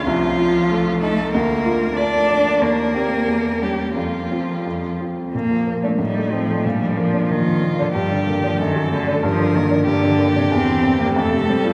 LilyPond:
<<
  \new Staff \with { instrumentName = "Violin" } { \time 2/4 \key bes \major \tempo 4 = 93 f'4. a'8 | bes'4 d''4 | bes'4. g'8 | f'4. r8 |
r4 ees'4 | d'4 f'4 | g'4 a'4 | bes'4 g'4~ |
\key f \major g'4 a'4 | }
  \new Staff \with { instrumentName = "Grand piano" } { \time 2/4 \key bes \major c,8 f'8 a8 ees'8 | d,8 f'8 bes8 d'8 | ees,8 <c' g'>8 e,8 <cis' g'>8 | f,8 <c' f'>8 f,8 <c' f'>8 |
bes,16 f16 bes16 d'16 a,16 a16 c'16 a16 | bes,16 f16 bes16 d'16 bes,16 f16 bes16 d'16 | g,16 d16 bes16 d'16 fis,16 fis16 a16 d'16 | g,16 d16 bes16 d'16 g,16 d16 bes16 d'16 |
\key f \major e,16 e16 c'16 g'16 f,16 c16 c'16 f'16 | }
  \new Staff \with { instrumentName = "Cello" } { \clef bass \time 2/4 \key bes \major f4. a8 | bes4 d'4 | bes4. g8 | f4. r8 |
bes8. a16 g8 f8 | g8 f8 ees8. d16 | g8. f16 ees8 d8 | f8 ees8 d8. c16 |
\key f \major c'8. bes16 a8 g8 | }
>>